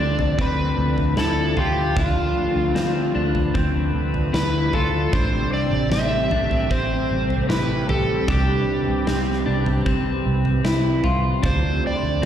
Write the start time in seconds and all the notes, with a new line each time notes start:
Already playing: D3 F3 A3 C4 D4 D5
0.00 D2 D4
0.19 floor tom
0.38 D2 C4 B4, kick
0.79 D2
0.98 floor tom
1.17 D2 E4 A4, snare
1.57 D2 F4 G4, floor tom
1.96 D2 D4 F4 B4, kick, floor tom
2.56 D2
2.75 D2 C4, snare
3.15 D2 D4
3.35 floor tom
3.54 D2 C4, kick
3.95 D2
4.14 floor tom
4.34 D2 E4 B4, snare
4.73 D2 F4 A4, floor tom
5.13 A1 C3 G3 A3 C4 D4 G4 C5, kick, floor tom
5.53 D5
5.71 A1
5.91 A1 C4 E5, snare
6.31 A1 D4, floor tom
6.51 floor tom
6.71 A1 C4 C5, kick
7.11 A1
7.30 floor tom
7.49 A1 E4 B4, snare
7.89 A1 G4 A4, floor tom
8.28 C2 D4 G4 B4, kick, floor tom
8.88 C2
9.07 C2 C4, snare
9.46 C2 D4
9.66 floor tom
9.86 C2 C4, kick
10.26 C2
10.45 floor tom
10.65 C2 E4, snare
11.04 C2 F4, floor tom
11.43 D2 D3 F3 A3 C4 D4 C5, kick, floor tom
11.86 D5 G5
11.91 B5
11.96 C6
12.03 D2
12.22 C4